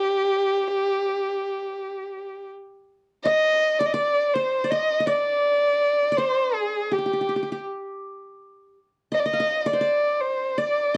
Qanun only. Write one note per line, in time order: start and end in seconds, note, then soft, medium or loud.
0.00 0.14 F4 soft
0.00 2.48 G4 medium
3.25 3.86 D#5 medium
3.80 3.93 D5 medium
3.94 4.64 D5 medium
4.35 5.41 C5 medium
4.64 4.78 D5 medium
4.72 5.00 D#5 medium
5.00 5.13 D#5 medium
5.07 6.10 D5 medium
6.12 7.10 D5 medium
6.18 7.23 C5 medium
6.91 6.98 G4 soft
6.98 7.05 G4 soft
7.05 7.13 G4 soft
7.13 7.20 G4 soft
7.21 7.28 G4 soft
7.29 7.35 G4 soft
7.36 7.42 G4 soft
7.42 7.51 G4 soft
7.52 8.77 G4 soft
9.12 9.25 D#5 medium
9.26 9.39 D#5 medium
9.33 10.22 F5 soft
9.40 9.72 D#5 medium
9.66 9.80 D5 medium
9.73 10.79 C5 medium
9.81 10.57 D5 medium
10.58 10.97 D5 medium